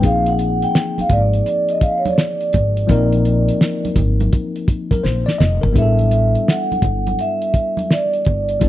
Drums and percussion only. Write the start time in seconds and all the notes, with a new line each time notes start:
0.02 kick, closed hi-hat, shaker
0.26 closed hi-hat, shaker
0.38 closed hi-hat, shaker
0.62 closed hi-hat, shaker
0.74 snare, shaker
0.98 closed hi-hat, high conga, shaker
1.09 kick, closed hi-hat, low conga, shaker
1.33 closed hi-hat, shaker
1.46 closed hi-hat, shaker
1.69 closed hi-hat, shaker
1.81 kick, closed hi-hat, shaker
2.05 closed hi-hat, high conga, shaker
2.18 snare, shaker
2.41 closed hi-hat, shaker
2.53 kick, closed hi-hat, low conga, shaker
2.77 closed hi-hat, shaker
2.89 kick, closed hi-hat, shaker
3.13 closed hi-hat, high conga, shaker
3.25 closed hi-hat, shaker
3.48 closed hi-hat, shaker
3.61 snare, shaker
3.85 closed hi-hat, high conga, shaker
3.96 kick, closed hi-hat, low conga, shaker
4.20 closed hi-hat, high conga, shaker
4.33 kick, closed hi-hat, shaker
4.56 closed hi-hat, shaker
4.68 kick, closed hi-hat, shaker
4.91 kick, closed hi-hat, high conga, shaker
5.04 snare, high conga, shaker
5.27 snare, shaker
5.40 snare, low conga, shaker
5.63 floor tom, shaker
5.76 kick, closed hi-hat, shaker
5.99 closed hi-hat, high conga, shaker
6.11 closed hi-hat, shaker
6.35 closed hi-hat, shaker
6.48 snare, shaker
6.72 closed hi-hat, high conga, shaker
6.82 kick, closed hi-hat, low conga, shaker
7.07 closed hi-hat, high conga, shaker
7.19 closed hi-hat, shaker
7.42 closed hi-hat, shaker
7.54 kick, closed hi-hat, shaker
7.77 closed hi-hat, high conga, shaker
7.90 snare, shaker
8.13 closed hi-hat, shaker
8.25 kick, closed hi-hat, low conga, shaker
8.49 closed hi-hat, shaker
8.61 kick, closed hi-hat, shaker